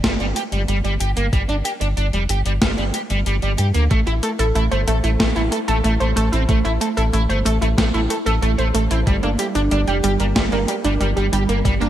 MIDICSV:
0, 0, Header, 1, 5, 480
1, 0, Start_track
1, 0, Tempo, 645161
1, 989, Time_signature, 4, 2, 24, 8
1, 8849, End_track
2, 0, Start_track
2, 0, Title_t, "Synth arpeggio sound"
2, 0, Program_c, 0, 84
2, 2907, Note_on_c, 0, 57, 80
2, 3005, Note_off_c, 0, 57, 0
2, 3027, Note_on_c, 0, 64, 100
2, 3126, Note_off_c, 0, 64, 0
2, 3148, Note_on_c, 0, 57, 78
2, 3246, Note_off_c, 0, 57, 0
2, 3267, Note_on_c, 0, 69, 98
2, 3382, Note_off_c, 0, 69, 0
2, 3388, Note_on_c, 0, 57, 83
2, 3447, Note_off_c, 0, 57, 0
2, 3508, Note_on_c, 0, 72, 76
2, 3606, Note_off_c, 0, 72, 0
2, 3628, Note_on_c, 0, 57, 98
2, 3742, Note_off_c, 0, 57, 0
2, 3748, Note_on_c, 0, 64, 72
2, 3846, Note_off_c, 0, 64, 0
2, 3866, Note_on_c, 0, 57, 79
2, 3965, Note_off_c, 0, 57, 0
2, 3986, Note_on_c, 0, 64, 101
2, 4085, Note_off_c, 0, 64, 0
2, 4105, Note_on_c, 0, 57, 77
2, 4204, Note_off_c, 0, 57, 0
2, 4226, Note_on_c, 0, 69, 104
2, 4341, Note_off_c, 0, 69, 0
2, 4345, Note_on_c, 0, 57, 81
2, 4405, Note_off_c, 0, 57, 0
2, 4466, Note_on_c, 0, 72, 75
2, 4565, Note_off_c, 0, 72, 0
2, 4584, Note_on_c, 0, 57, 104
2, 4700, Note_off_c, 0, 57, 0
2, 4705, Note_on_c, 0, 64, 77
2, 4804, Note_off_c, 0, 64, 0
2, 4825, Note_on_c, 0, 57, 81
2, 4924, Note_off_c, 0, 57, 0
2, 4945, Note_on_c, 0, 64, 101
2, 5045, Note_off_c, 0, 64, 0
2, 5066, Note_on_c, 0, 57, 77
2, 5165, Note_off_c, 0, 57, 0
2, 5186, Note_on_c, 0, 69, 97
2, 5301, Note_off_c, 0, 69, 0
2, 5306, Note_on_c, 0, 57, 82
2, 5366, Note_off_c, 0, 57, 0
2, 5427, Note_on_c, 0, 72, 75
2, 5526, Note_off_c, 0, 72, 0
2, 5545, Note_on_c, 0, 57, 99
2, 5661, Note_off_c, 0, 57, 0
2, 5666, Note_on_c, 0, 64, 78
2, 5765, Note_off_c, 0, 64, 0
2, 5786, Note_on_c, 0, 57, 78
2, 5885, Note_off_c, 0, 57, 0
2, 5907, Note_on_c, 0, 64, 99
2, 6006, Note_off_c, 0, 64, 0
2, 6026, Note_on_c, 0, 57, 78
2, 6125, Note_off_c, 0, 57, 0
2, 6146, Note_on_c, 0, 69, 103
2, 6261, Note_off_c, 0, 69, 0
2, 6267, Note_on_c, 0, 57, 85
2, 6327, Note_off_c, 0, 57, 0
2, 6386, Note_on_c, 0, 72, 76
2, 6485, Note_off_c, 0, 72, 0
2, 6507, Note_on_c, 0, 57, 101
2, 6621, Note_off_c, 0, 57, 0
2, 6628, Note_on_c, 0, 64, 78
2, 6726, Note_off_c, 0, 64, 0
2, 6746, Note_on_c, 0, 55, 78
2, 6845, Note_off_c, 0, 55, 0
2, 6868, Note_on_c, 0, 58, 97
2, 6966, Note_off_c, 0, 58, 0
2, 6986, Note_on_c, 0, 55, 77
2, 7085, Note_off_c, 0, 55, 0
2, 7106, Note_on_c, 0, 62, 100
2, 7221, Note_off_c, 0, 62, 0
2, 7228, Note_on_c, 0, 55, 81
2, 7287, Note_off_c, 0, 55, 0
2, 7348, Note_on_c, 0, 67, 77
2, 7446, Note_off_c, 0, 67, 0
2, 7468, Note_on_c, 0, 55, 97
2, 7582, Note_off_c, 0, 55, 0
2, 7589, Note_on_c, 0, 58, 73
2, 7687, Note_off_c, 0, 58, 0
2, 7710, Note_on_c, 0, 55, 84
2, 7807, Note_off_c, 0, 55, 0
2, 7828, Note_on_c, 0, 58, 106
2, 7926, Note_off_c, 0, 58, 0
2, 7948, Note_on_c, 0, 55, 76
2, 8046, Note_off_c, 0, 55, 0
2, 8069, Note_on_c, 0, 62, 101
2, 8183, Note_off_c, 0, 62, 0
2, 8187, Note_on_c, 0, 55, 84
2, 8246, Note_off_c, 0, 55, 0
2, 8307, Note_on_c, 0, 67, 77
2, 8405, Note_off_c, 0, 67, 0
2, 8426, Note_on_c, 0, 55, 102
2, 8541, Note_off_c, 0, 55, 0
2, 8547, Note_on_c, 0, 58, 77
2, 8646, Note_off_c, 0, 58, 0
2, 8666, Note_on_c, 0, 55, 79
2, 8765, Note_off_c, 0, 55, 0
2, 8785, Note_on_c, 0, 58, 100
2, 8849, Note_off_c, 0, 58, 0
2, 8849, End_track
3, 0, Start_track
3, 0, Title_t, "Overdriven electric guitar"
3, 0, Program_c, 1, 29
3, 30, Note_on_c, 1, 55, 78
3, 89, Note_off_c, 1, 55, 0
3, 150, Note_on_c, 1, 55, 73
3, 185, Note_off_c, 1, 55, 0
3, 270, Note_on_c, 1, 67, 72
3, 305, Note_off_c, 1, 67, 0
3, 389, Note_on_c, 1, 55, 74
3, 449, Note_off_c, 1, 55, 0
3, 509, Note_on_c, 1, 55, 79
3, 569, Note_off_c, 1, 55, 0
3, 629, Note_on_c, 1, 55, 73
3, 689, Note_off_c, 1, 55, 0
3, 748, Note_on_c, 1, 67, 99
3, 808, Note_off_c, 1, 67, 0
3, 868, Note_on_c, 1, 58, 72
3, 928, Note_off_c, 1, 58, 0
3, 988, Note_on_c, 1, 55, 84
3, 1048, Note_off_c, 1, 55, 0
3, 1107, Note_on_c, 1, 62, 96
3, 1144, Note_off_c, 1, 62, 0
3, 1228, Note_on_c, 1, 67, 71
3, 1264, Note_off_c, 1, 67, 0
3, 1348, Note_on_c, 1, 62, 71
3, 1384, Note_off_c, 1, 62, 0
3, 1468, Note_on_c, 1, 62, 76
3, 1528, Note_off_c, 1, 62, 0
3, 1590, Note_on_c, 1, 55, 72
3, 1649, Note_off_c, 1, 55, 0
3, 1709, Note_on_c, 1, 67, 99
3, 1769, Note_off_c, 1, 67, 0
3, 1828, Note_on_c, 1, 55, 74
3, 1864, Note_off_c, 1, 55, 0
3, 1949, Note_on_c, 1, 55, 79
3, 2009, Note_off_c, 1, 55, 0
3, 2069, Note_on_c, 1, 55, 72
3, 2105, Note_off_c, 1, 55, 0
3, 2190, Note_on_c, 1, 67, 71
3, 2225, Note_off_c, 1, 67, 0
3, 2310, Note_on_c, 1, 55, 74
3, 2369, Note_off_c, 1, 55, 0
3, 2430, Note_on_c, 1, 55, 77
3, 2489, Note_off_c, 1, 55, 0
3, 2550, Note_on_c, 1, 55, 71
3, 2609, Note_off_c, 1, 55, 0
3, 2668, Note_on_c, 1, 67, 93
3, 2728, Note_off_c, 1, 67, 0
3, 2789, Note_on_c, 1, 58, 71
3, 2849, Note_off_c, 1, 58, 0
3, 2909, Note_on_c, 1, 57, 80
3, 2969, Note_off_c, 1, 57, 0
3, 3029, Note_on_c, 1, 64, 96
3, 3065, Note_off_c, 1, 64, 0
3, 3149, Note_on_c, 1, 69, 73
3, 3185, Note_off_c, 1, 69, 0
3, 3268, Note_on_c, 1, 64, 72
3, 3304, Note_off_c, 1, 64, 0
3, 3388, Note_on_c, 1, 64, 73
3, 3448, Note_off_c, 1, 64, 0
3, 3507, Note_on_c, 1, 57, 76
3, 3568, Note_off_c, 1, 57, 0
3, 3628, Note_on_c, 1, 69, 98
3, 3688, Note_off_c, 1, 69, 0
3, 3748, Note_on_c, 1, 57, 75
3, 3784, Note_off_c, 1, 57, 0
3, 3867, Note_on_c, 1, 57, 78
3, 3928, Note_off_c, 1, 57, 0
3, 3989, Note_on_c, 1, 57, 74
3, 4024, Note_off_c, 1, 57, 0
3, 4108, Note_on_c, 1, 69, 70
3, 4144, Note_off_c, 1, 69, 0
3, 4228, Note_on_c, 1, 57, 75
3, 4288, Note_off_c, 1, 57, 0
3, 4348, Note_on_c, 1, 57, 81
3, 4408, Note_off_c, 1, 57, 0
3, 4467, Note_on_c, 1, 57, 75
3, 4528, Note_off_c, 1, 57, 0
3, 4587, Note_on_c, 1, 69, 97
3, 4648, Note_off_c, 1, 69, 0
3, 4708, Note_on_c, 1, 60, 74
3, 4768, Note_off_c, 1, 60, 0
3, 4828, Note_on_c, 1, 57, 80
3, 4888, Note_off_c, 1, 57, 0
3, 4947, Note_on_c, 1, 64, 101
3, 4984, Note_off_c, 1, 64, 0
3, 5067, Note_on_c, 1, 69, 71
3, 5104, Note_off_c, 1, 69, 0
3, 5188, Note_on_c, 1, 64, 73
3, 5224, Note_off_c, 1, 64, 0
3, 5307, Note_on_c, 1, 64, 73
3, 5368, Note_off_c, 1, 64, 0
3, 5427, Note_on_c, 1, 57, 74
3, 5488, Note_off_c, 1, 57, 0
3, 5548, Note_on_c, 1, 69, 94
3, 5608, Note_off_c, 1, 69, 0
3, 5669, Note_on_c, 1, 57, 73
3, 5705, Note_off_c, 1, 57, 0
3, 5789, Note_on_c, 1, 57, 77
3, 5849, Note_off_c, 1, 57, 0
3, 5909, Note_on_c, 1, 57, 71
3, 5945, Note_off_c, 1, 57, 0
3, 6028, Note_on_c, 1, 69, 73
3, 6064, Note_off_c, 1, 69, 0
3, 6149, Note_on_c, 1, 57, 72
3, 6209, Note_off_c, 1, 57, 0
3, 6269, Note_on_c, 1, 57, 80
3, 6329, Note_off_c, 1, 57, 0
3, 6388, Note_on_c, 1, 57, 73
3, 6448, Note_off_c, 1, 57, 0
3, 6508, Note_on_c, 1, 69, 98
3, 6568, Note_off_c, 1, 69, 0
3, 6628, Note_on_c, 1, 60, 74
3, 6688, Note_off_c, 1, 60, 0
3, 6749, Note_on_c, 1, 55, 80
3, 6809, Note_off_c, 1, 55, 0
3, 6870, Note_on_c, 1, 62, 99
3, 6905, Note_off_c, 1, 62, 0
3, 6990, Note_on_c, 1, 67, 72
3, 7025, Note_off_c, 1, 67, 0
3, 7109, Note_on_c, 1, 62, 76
3, 7145, Note_off_c, 1, 62, 0
3, 7229, Note_on_c, 1, 62, 78
3, 7289, Note_off_c, 1, 62, 0
3, 7350, Note_on_c, 1, 55, 73
3, 7409, Note_off_c, 1, 55, 0
3, 7470, Note_on_c, 1, 67, 97
3, 7529, Note_off_c, 1, 67, 0
3, 7592, Note_on_c, 1, 55, 75
3, 7626, Note_off_c, 1, 55, 0
3, 7711, Note_on_c, 1, 55, 77
3, 7770, Note_off_c, 1, 55, 0
3, 7830, Note_on_c, 1, 55, 77
3, 7865, Note_off_c, 1, 55, 0
3, 7949, Note_on_c, 1, 67, 73
3, 7985, Note_off_c, 1, 67, 0
3, 8070, Note_on_c, 1, 55, 77
3, 8129, Note_off_c, 1, 55, 0
3, 8189, Note_on_c, 1, 55, 77
3, 8249, Note_off_c, 1, 55, 0
3, 8308, Note_on_c, 1, 55, 75
3, 8368, Note_off_c, 1, 55, 0
3, 8427, Note_on_c, 1, 67, 95
3, 8488, Note_off_c, 1, 67, 0
3, 8548, Note_on_c, 1, 58, 71
3, 8608, Note_off_c, 1, 58, 0
3, 8668, Note_on_c, 1, 55, 82
3, 8728, Note_off_c, 1, 55, 0
3, 8788, Note_on_c, 1, 62, 102
3, 8824, Note_off_c, 1, 62, 0
3, 8849, End_track
4, 0, Start_track
4, 0, Title_t, "Analog synth bass"
4, 0, Program_c, 2, 38
4, 29, Note_on_c, 2, 31, 96
4, 129, Note_off_c, 2, 31, 0
4, 151, Note_on_c, 2, 31, 80
4, 250, Note_off_c, 2, 31, 0
4, 389, Note_on_c, 2, 31, 82
4, 489, Note_off_c, 2, 31, 0
4, 509, Note_on_c, 2, 31, 104
4, 609, Note_off_c, 2, 31, 0
4, 629, Note_on_c, 2, 31, 72
4, 729, Note_off_c, 2, 31, 0
4, 748, Note_on_c, 2, 31, 98
4, 849, Note_off_c, 2, 31, 0
4, 868, Note_on_c, 2, 31, 81
4, 969, Note_off_c, 2, 31, 0
4, 988, Note_on_c, 2, 31, 98
4, 1088, Note_off_c, 2, 31, 0
4, 1108, Note_on_c, 2, 31, 79
4, 1208, Note_off_c, 2, 31, 0
4, 1346, Note_on_c, 2, 31, 82
4, 1448, Note_off_c, 2, 31, 0
4, 1467, Note_on_c, 2, 31, 98
4, 1568, Note_off_c, 2, 31, 0
4, 1587, Note_on_c, 2, 29, 79
4, 1688, Note_off_c, 2, 29, 0
4, 1707, Note_on_c, 2, 31, 94
4, 1808, Note_off_c, 2, 31, 0
4, 1828, Note_on_c, 2, 31, 79
4, 1929, Note_off_c, 2, 31, 0
4, 1948, Note_on_c, 2, 31, 98
4, 2049, Note_off_c, 2, 31, 0
4, 2070, Note_on_c, 2, 31, 78
4, 2170, Note_off_c, 2, 31, 0
4, 2310, Note_on_c, 2, 31, 79
4, 2410, Note_off_c, 2, 31, 0
4, 2428, Note_on_c, 2, 31, 99
4, 2529, Note_off_c, 2, 31, 0
4, 2551, Note_on_c, 2, 31, 74
4, 2650, Note_off_c, 2, 31, 0
4, 2671, Note_on_c, 2, 43, 93
4, 2770, Note_off_c, 2, 43, 0
4, 2791, Note_on_c, 2, 38, 81
4, 2890, Note_off_c, 2, 38, 0
4, 2908, Note_on_c, 2, 33, 94
4, 3009, Note_off_c, 2, 33, 0
4, 3030, Note_on_c, 2, 33, 77
4, 3129, Note_off_c, 2, 33, 0
4, 3270, Note_on_c, 2, 33, 80
4, 3369, Note_off_c, 2, 33, 0
4, 3389, Note_on_c, 2, 33, 100
4, 3489, Note_off_c, 2, 33, 0
4, 3512, Note_on_c, 2, 31, 77
4, 3610, Note_off_c, 2, 31, 0
4, 3630, Note_on_c, 2, 33, 92
4, 3729, Note_off_c, 2, 33, 0
4, 3750, Note_on_c, 2, 33, 80
4, 3850, Note_off_c, 2, 33, 0
4, 3868, Note_on_c, 2, 33, 93
4, 3969, Note_off_c, 2, 33, 0
4, 3990, Note_on_c, 2, 33, 77
4, 4090, Note_off_c, 2, 33, 0
4, 4230, Note_on_c, 2, 33, 82
4, 4330, Note_off_c, 2, 33, 0
4, 4350, Note_on_c, 2, 33, 97
4, 4450, Note_off_c, 2, 33, 0
4, 4470, Note_on_c, 2, 33, 74
4, 4570, Note_off_c, 2, 33, 0
4, 4590, Note_on_c, 2, 33, 98
4, 4689, Note_off_c, 2, 33, 0
4, 4711, Note_on_c, 2, 33, 82
4, 4810, Note_off_c, 2, 33, 0
4, 4828, Note_on_c, 2, 33, 101
4, 4929, Note_off_c, 2, 33, 0
4, 4951, Note_on_c, 2, 33, 79
4, 5050, Note_off_c, 2, 33, 0
4, 5191, Note_on_c, 2, 33, 79
4, 5290, Note_off_c, 2, 33, 0
4, 5310, Note_on_c, 2, 33, 100
4, 5410, Note_off_c, 2, 33, 0
4, 5430, Note_on_c, 2, 31, 75
4, 5530, Note_off_c, 2, 31, 0
4, 5550, Note_on_c, 2, 33, 90
4, 5650, Note_off_c, 2, 33, 0
4, 5670, Note_on_c, 2, 33, 81
4, 5769, Note_off_c, 2, 33, 0
4, 5788, Note_on_c, 2, 33, 98
4, 5889, Note_off_c, 2, 33, 0
4, 5910, Note_on_c, 2, 33, 75
4, 6010, Note_off_c, 2, 33, 0
4, 6149, Note_on_c, 2, 33, 79
4, 6249, Note_off_c, 2, 33, 0
4, 6268, Note_on_c, 2, 33, 102
4, 6368, Note_off_c, 2, 33, 0
4, 6389, Note_on_c, 2, 33, 73
4, 6489, Note_off_c, 2, 33, 0
4, 6509, Note_on_c, 2, 33, 93
4, 6609, Note_off_c, 2, 33, 0
4, 6629, Note_on_c, 2, 33, 83
4, 6729, Note_off_c, 2, 33, 0
4, 6748, Note_on_c, 2, 31, 103
4, 6848, Note_off_c, 2, 31, 0
4, 6870, Note_on_c, 2, 31, 76
4, 6970, Note_off_c, 2, 31, 0
4, 7109, Note_on_c, 2, 31, 79
4, 7209, Note_off_c, 2, 31, 0
4, 7228, Note_on_c, 2, 31, 97
4, 7329, Note_off_c, 2, 31, 0
4, 7348, Note_on_c, 2, 29, 76
4, 7449, Note_off_c, 2, 29, 0
4, 7470, Note_on_c, 2, 31, 93
4, 7570, Note_off_c, 2, 31, 0
4, 7588, Note_on_c, 2, 31, 79
4, 7689, Note_off_c, 2, 31, 0
4, 7708, Note_on_c, 2, 31, 99
4, 7808, Note_off_c, 2, 31, 0
4, 7828, Note_on_c, 2, 31, 78
4, 7929, Note_off_c, 2, 31, 0
4, 8070, Note_on_c, 2, 31, 81
4, 8169, Note_off_c, 2, 31, 0
4, 8189, Note_on_c, 2, 31, 100
4, 8289, Note_off_c, 2, 31, 0
4, 8309, Note_on_c, 2, 31, 76
4, 8409, Note_off_c, 2, 31, 0
4, 8429, Note_on_c, 2, 31, 93
4, 8529, Note_off_c, 2, 31, 0
4, 8548, Note_on_c, 2, 31, 79
4, 8649, Note_off_c, 2, 31, 0
4, 8669, Note_on_c, 2, 31, 97
4, 8769, Note_off_c, 2, 31, 0
4, 8788, Note_on_c, 2, 31, 79
4, 8849, Note_off_c, 2, 31, 0
4, 8849, End_track
5, 0, Start_track
5, 0, Title_t, "Drums"
5, 29, Note_on_c, 9, 36, 119
5, 29, Note_on_c, 9, 38, 121
5, 29, Note_on_c, 9, 42, 51
5, 103, Note_off_c, 9, 36, 0
5, 104, Note_off_c, 9, 38, 0
5, 104, Note_off_c, 9, 42, 0
5, 149, Note_on_c, 9, 42, 26
5, 223, Note_off_c, 9, 42, 0
5, 268, Note_on_c, 9, 42, 89
5, 343, Note_off_c, 9, 42, 0
5, 389, Note_on_c, 9, 42, 50
5, 463, Note_off_c, 9, 42, 0
5, 509, Note_on_c, 9, 42, 52
5, 583, Note_off_c, 9, 42, 0
5, 629, Note_on_c, 9, 42, 26
5, 704, Note_off_c, 9, 42, 0
5, 748, Note_on_c, 9, 42, 89
5, 822, Note_off_c, 9, 42, 0
5, 869, Note_on_c, 9, 42, 53
5, 943, Note_off_c, 9, 42, 0
5, 988, Note_on_c, 9, 36, 120
5, 989, Note_on_c, 9, 42, 48
5, 1063, Note_off_c, 9, 36, 0
5, 1063, Note_off_c, 9, 42, 0
5, 1108, Note_on_c, 9, 42, 25
5, 1182, Note_off_c, 9, 42, 0
5, 1229, Note_on_c, 9, 42, 90
5, 1303, Note_off_c, 9, 42, 0
5, 1347, Note_on_c, 9, 42, 50
5, 1422, Note_off_c, 9, 42, 0
5, 1467, Note_on_c, 9, 42, 49
5, 1541, Note_off_c, 9, 42, 0
5, 1587, Note_on_c, 9, 42, 24
5, 1661, Note_off_c, 9, 42, 0
5, 1706, Note_on_c, 9, 42, 86
5, 1780, Note_off_c, 9, 42, 0
5, 1827, Note_on_c, 9, 42, 50
5, 1902, Note_off_c, 9, 42, 0
5, 1947, Note_on_c, 9, 38, 121
5, 1947, Note_on_c, 9, 42, 51
5, 1948, Note_on_c, 9, 36, 114
5, 2021, Note_off_c, 9, 38, 0
5, 2021, Note_off_c, 9, 42, 0
5, 2023, Note_off_c, 9, 36, 0
5, 2067, Note_on_c, 9, 42, 25
5, 2141, Note_off_c, 9, 42, 0
5, 2186, Note_on_c, 9, 42, 88
5, 2261, Note_off_c, 9, 42, 0
5, 2307, Note_on_c, 9, 42, 48
5, 2381, Note_off_c, 9, 42, 0
5, 2427, Note_on_c, 9, 42, 51
5, 2501, Note_off_c, 9, 42, 0
5, 2547, Note_on_c, 9, 42, 24
5, 2621, Note_off_c, 9, 42, 0
5, 2666, Note_on_c, 9, 42, 85
5, 2740, Note_off_c, 9, 42, 0
5, 2786, Note_on_c, 9, 42, 51
5, 2861, Note_off_c, 9, 42, 0
5, 2907, Note_on_c, 9, 42, 47
5, 2908, Note_on_c, 9, 36, 117
5, 2982, Note_off_c, 9, 42, 0
5, 2983, Note_off_c, 9, 36, 0
5, 3027, Note_on_c, 9, 42, 25
5, 3102, Note_off_c, 9, 42, 0
5, 3147, Note_on_c, 9, 42, 84
5, 3221, Note_off_c, 9, 42, 0
5, 3269, Note_on_c, 9, 42, 51
5, 3343, Note_off_c, 9, 42, 0
5, 3389, Note_on_c, 9, 42, 47
5, 3463, Note_off_c, 9, 42, 0
5, 3509, Note_on_c, 9, 42, 23
5, 3583, Note_off_c, 9, 42, 0
5, 3628, Note_on_c, 9, 42, 82
5, 3702, Note_off_c, 9, 42, 0
5, 3749, Note_on_c, 9, 42, 48
5, 3823, Note_off_c, 9, 42, 0
5, 3868, Note_on_c, 9, 36, 112
5, 3869, Note_on_c, 9, 38, 113
5, 3869, Note_on_c, 9, 42, 49
5, 3943, Note_off_c, 9, 36, 0
5, 3943, Note_off_c, 9, 38, 0
5, 3943, Note_off_c, 9, 42, 0
5, 3988, Note_on_c, 9, 42, 25
5, 4063, Note_off_c, 9, 42, 0
5, 4107, Note_on_c, 9, 42, 82
5, 4182, Note_off_c, 9, 42, 0
5, 4228, Note_on_c, 9, 42, 49
5, 4302, Note_off_c, 9, 42, 0
5, 4348, Note_on_c, 9, 42, 50
5, 4423, Note_off_c, 9, 42, 0
5, 4468, Note_on_c, 9, 42, 25
5, 4542, Note_off_c, 9, 42, 0
5, 4589, Note_on_c, 9, 42, 84
5, 4663, Note_off_c, 9, 42, 0
5, 4708, Note_on_c, 9, 42, 50
5, 4783, Note_off_c, 9, 42, 0
5, 4827, Note_on_c, 9, 42, 49
5, 4828, Note_on_c, 9, 36, 117
5, 4901, Note_off_c, 9, 42, 0
5, 4902, Note_off_c, 9, 36, 0
5, 4948, Note_on_c, 9, 42, 24
5, 5023, Note_off_c, 9, 42, 0
5, 5069, Note_on_c, 9, 42, 86
5, 5143, Note_off_c, 9, 42, 0
5, 5189, Note_on_c, 9, 42, 51
5, 5264, Note_off_c, 9, 42, 0
5, 5308, Note_on_c, 9, 42, 49
5, 5383, Note_off_c, 9, 42, 0
5, 5430, Note_on_c, 9, 42, 23
5, 5505, Note_off_c, 9, 42, 0
5, 5550, Note_on_c, 9, 42, 86
5, 5624, Note_off_c, 9, 42, 0
5, 5670, Note_on_c, 9, 42, 50
5, 5744, Note_off_c, 9, 42, 0
5, 5788, Note_on_c, 9, 36, 108
5, 5790, Note_on_c, 9, 38, 109
5, 5790, Note_on_c, 9, 42, 49
5, 5862, Note_off_c, 9, 36, 0
5, 5864, Note_off_c, 9, 38, 0
5, 5864, Note_off_c, 9, 42, 0
5, 5910, Note_on_c, 9, 42, 24
5, 5984, Note_off_c, 9, 42, 0
5, 6029, Note_on_c, 9, 42, 85
5, 6103, Note_off_c, 9, 42, 0
5, 6150, Note_on_c, 9, 42, 49
5, 6224, Note_off_c, 9, 42, 0
5, 6269, Note_on_c, 9, 42, 49
5, 6343, Note_off_c, 9, 42, 0
5, 6388, Note_on_c, 9, 42, 24
5, 6462, Note_off_c, 9, 42, 0
5, 6507, Note_on_c, 9, 42, 85
5, 6582, Note_off_c, 9, 42, 0
5, 6628, Note_on_c, 9, 42, 50
5, 6702, Note_off_c, 9, 42, 0
5, 6748, Note_on_c, 9, 36, 113
5, 6748, Note_on_c, 9, 42, 50
5, 6822, Note_off_c, 9, 36, 0
5, 6822, Note_off_c, 9, 42, 0
5, 6867, Note_on_c, 9, 42, 24
5, 6941, Note_off_c, 9, 42, 0
5, 6986, Note_on_c, 9, 42, 86
5, 7060, Note_off_c, 9, 42, 0
5, 7107, Note_on_c, 9, 42, 52
5, 7181, Note_off_c, 9, 42, 0
5, 7227, Note_on_c, 9, 42, 50
5, 7301, Note_off_c, 9, 42, 0
5, 7347, Note_on_c, 9, 42, 24
5, 7421, Note_off_c, 9, 42, 0
5, 7468, Note_on_c, 9, 42, 86
5, 7543, Note_off_c, 9, 42, 0
5, 7587, Note_on_c, 9, 42, 49
5, 7662, Note_off_c, 9, 42, 0
5, 7707, Note_on_c, 9, 38, 113
5, 7707, Note_on_c, 9, 42, 52
5, 7708, Note_on_c, 9, 36, 103
5, 7782, Note_off_c, 9, 36, 0
5, 7782, Note_off_c, 9, 38, 0
5, 7782, Note_off_c, 9, 42, 0
5, 7828, Note_on_c, 9, 42, 25
5, 7902, Note_off_c, 9, 42, 0
5, 7948, Note_on_c, 9, 42, 90
5, 8023, Note_off_c, 9, 42, 0
5, 8069, Note_on_c, 9, 42, 52
5, 8143, Note_off_c, 9, 42, 0
5, 8189, Note_on_c, 9, 42, 52
5, 8263, Note_off_c, 9, 42, 0
5, 8309, Note_on_c, 9, 42, 26
5, 8384, Note_off_c, 9, 42, 0
5, 8429, Note_on_c, 9, 42, 87
5, 8503, Note_off_c, 9, 42, 0
5, 8549, Note_on_c, 9, 42, 50
5, 8624, Note_off_c, 9, 42, 0
5, 8668, Note_on_c, 9, 36, 114
5, 8670, Note_on_c, 9, 42, 49
5, 8742, Note_off_c, 9, 36, 0
5, 8745, Note_off_c, 9, 42, 0
5, 8790, Note_on_c, 9, 42, 25
5, 8849, Note_off_c, 9, 42, 0
5, 8849, End_track
0, 0, End_of_file